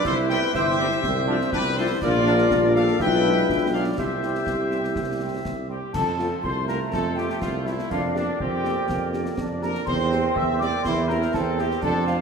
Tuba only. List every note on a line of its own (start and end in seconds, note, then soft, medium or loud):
0.05 0.46 C2 loud
0.53 0.95 G1 medium
1.04 1.44 C2 loud
1.53 1.94 C2 loud
2.03 2.45 A#1 loud
2.51 2.94 A#1 loud
3.00 3.43 B1 loud
3.49 3.92 B1 medium
3.98 4.41 C2 medium
4.47 4.90 C2 medium
4.96 5.39 C2 medium
5.44 5.81 C2 medium
5.94 6.35 F2 medium
6.43 6.84 C2 medium
6.91 7.33 F2 loud
7.42 7.82 C2 medium
7.90 8.31 F2 medium
8.40 8.81 F2 medium
8.88 9.29 F2 medium
9.37 9.78 F2 medium
9.87 10.28 E2 loud
10.35 10.77 E2 medium
10.84 11.25 E2 loud
11.34 11.75 E2 medium
11.83 12.21 F2 loud